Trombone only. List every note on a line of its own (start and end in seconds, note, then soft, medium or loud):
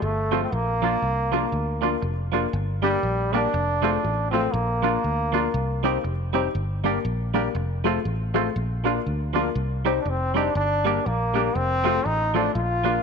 0.02 0.42 A3 medium
0.43 0.55 C4 medium
0.53 2.04 A#3 loud
2.83 3.35 G3 loud
3.33 4.30 D4 medium
4.31 4.53 C4 loud
4.52 6.03 A#3 medium
10.00 10.11 D4 medium
10.09 10.38 C4 medium
10.37 10.56 D4 medium
10.57 11.08 D4 medium
11.07 11.58 A#3 medium
11.56 12.08 C4 loud
12.06 12.37 D#4 loud
12.35 12.54 D4 loud
12.55 13.03 F4 loud